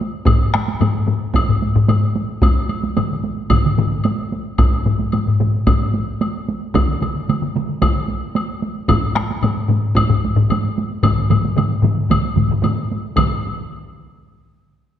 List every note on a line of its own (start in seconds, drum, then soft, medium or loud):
0.01 taiko high medium
0.15 taiko high soft
0.26 taiko loud
0.26 taiko low-mid loud
0.26 taiko high medium
0.26 high woodblock medium
0.41 taiko high soft
0.54 taiko rim medium
0.54 taiko high medium
0.54 high woodblock soft
0.68 taiko high medium
0.81 taiko low-mid loud
0.81 taiko high medium
0.81 high woodblock soft
0.95 taiko high soft
1.07 taiko low-mid medium
1.07 taiko high medium
1.34 taiko medium
1.34 taiko high medium
1.34 high woodblock medium
1.48 taiko low-mid medium
1.48 taiko high soft
1.62 taiko high medium
1.76 taiko low-mid loud
1.76 taiko high soft
1.88 taiko low-mid loud
1.88 taiko high medium
1.88 high woodblock soft
2.02 taiko high soft
2.16 taiko high medium
2.29 taiko high soft
2.42 taiko loud
2.42 taiko high medium
2.42 high woodblock medium
2.56 taiko high soft
2.69 taiko high medium
2.69 high woodblock soft
2.83 taiko high soft
2.97 taiko low-mid loud
2.97 taiko mid medium
2.97 taiko high medium
2.97 high woodblock soft
3.10 taiko high soft
3.24 taiko high medium
3.37 taiko high soft
3.50 taiko medium
3.50 taiko low-mid medium
3.50 taiko mid medium
3.50 taiko high medium
3.50 high woodblock medium
3.65 taiko low-mid medium
3.65 taiko mid medium
3.78 taiko low-mid loud
3.78 taiko mid loud
3.78 taiko high medium
3.91 taiko high soft
4.04 taiko high medium
4.04 high woodblock soft
4.19 taiko high soft
4.32 taiko high medium
4.46 taiko high soft
4.58 taiko loud
4.58 taiko low-mid medium
4.58 taiko high medium
4.58 high woodblock medium
4.73 taiko high soft
4.86 taiko low-mid medium
4.86 taiko high medium
4.99 taiko high soft
5.12 taiko low-mid medium
5.12 taiko high medium
5.12 high woodblock soft
5.27 taiko low-mid medium
5.27 taiko high soft
5.40 taiko low-mid loud
5.40 taiko high soft
5.54 taiko high soft
5.67 taiko loud
5.67 taiko low-mid medium
5.67 taiko high medium
5.67 high woodblock medium
5.81 taiko high soft
5.94 taiko high medium
6.08 taiko high soft
6.21 taiko high medium
6.21 high woodblock soft
6.35 taiko high soft
6.48 taiko high medium
6.75 taiko loud
6.75 taiko mid loud
6.75 taiko high medium
6.75 high woodblock medium
6.89 taiko high soft
7.02 taiko mid medium
7.02 taiko high medium
7.02 high woodblock soft
7.29 taiko mid medium
7.29 taiko high medium
7.29 high woodblock soft
7.42 taiko mid medium
7.42 taiko high soft
7.55 taiko mid medium
7.55 taiko high medium
7.69 taiko high soft
7.82 taiko medium
7.82 taiko mid medium
7.82 taiko high medium
7.82 high woodblock medium
7.95 taiko high soft
8.08 taiko high soft
8.22 taiko high soft
8.35 taiko high medium
8.35 high woodblock soft
8.49 taiko high soft
8.62 taiko high medium
8.76 taiko high soft
8.88 taiko loud
8.88 taiko low-mid loud
8.88 taiko high medium
8.88 high woodblock medium
9.03 taiko high soft
9.16 taiko rim medium
9.16 taiko high medium
9.16 high woodblock soft
9.31 taiko high soft
9.43 taiko low-mid loud
9.43 taiko high medium
9.43 high woodblock soft
9.58 taiko high soft
9.69 taiko low-mid loud
9.69 taiko high medium
9.85 taiko high soft
9.96 taiko medium
9.96 taiko high medium
9.96 high woodblock medium
10.10 taiko low-mid medium
10.10 taiko high soft
10.25 taiko high soft
10.36 taiko low-mid loud
10.36 taiko high soft
10.50 taiko low-mid loud
10.50 taiko high medium
10.50 high woodblock soft
10.64 taiko high soft
10.78 taiko high medium
10.91 taiko high soft
11.03 taiko medium
11.03 taiko low-mid loud
11.03 taiko mid loud
11.03 taiko high medium
11.03 high woodblock medium
11.18 taiko high soft
11.30 taiko low-mid loud
11.30 taiko mid loud
11.30 taiko high medium
11.30 high woodblock soft
11.45 taiko high medium
11.56 taiko low-mid loud
11.56 taiko mid medium
11.56 taiko high medium
11.56 high woodblock soft
11.72 taiko high soft
11.82 taiko low-mid medium
11.82 taiko mid medium
11.82 taiko high medium
11.98 taiko high soft
12.09 taiko medium
12.09 taiko low-mid medium
12.09 taiko mid medium
12.09 taiko high medium
12.09 high woodblock medium
12.25 taiko high soft
12.36 taiko low-mid medium
12.36 taiko mid medium
12.36 taiko high soft
12.49 taiko low-mid medium
12.49 taiko mid medium
12.49 taiko high soft
12.63 taiko low-mid loud
12.63 taiko mid loud
12.63 taiko high medium
12.63 high woodblock soft
12.78 taiko high soft
12.91 taiko high soft
13.05 taiko high soft
13.16 taiko medium
13.16 taiko low-mid loud
13.16 taiko mid loud
13.16 taiko high medium
13.16 high woodblock medium